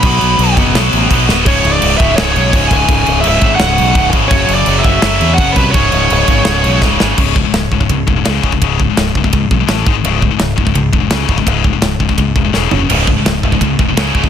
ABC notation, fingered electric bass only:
X:1
M:4/4
L:1/8
Q:1/4=168
K:C#m
V:1 name="Fingered electric bass" clef=bass
B,,, B,,, B,,, F,,, B,,, A,,, B,,, =D,,, | C,,, C,,, C,,, C,,, C,,, B,,, C,,, C,,, | C,,, C,,, C,,, G,,, C,,, B,,, C,,, G,,, | F,,, F,,, F,,, F,,, F,,, E,, F,,, ^B,,, |
C,,, C,,, C,,, G,,, C,,, B,,, C,,, G,,, | C,,,2 C,,, C,,, C,, E,,, C,, C,,, | C,,,2 C,,, C,,, C,, B,,, A,,, G,,, | C,,,2 C,,, C,,, C,, E,,, C,, C,,, |
C,,,2 C,,, C,,, C,, E,,, E,,, F,,, | C,,,2 C,,, C,,, C,, E,,, C,, C,,, |]